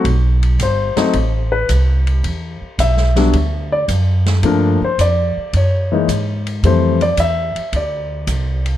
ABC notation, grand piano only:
X:1
M:4/4
L:1/8
Q:"Swing" 1/4=109
K:Bm
V:1 name="Grand piano"
z2 =c3 B z2 | z2 e3 d z2 | _B =c d2 ^c3 z | =c d e2 d3 z |]
V:2 name="Grand piano"
z3 [F,A,=C^D] z4 | z3 [F,G,B,D] z4 | [=F,A,_B,D] z4 [E,^G,^A,^D] z2 | [E,G,A,=C] z6 z |]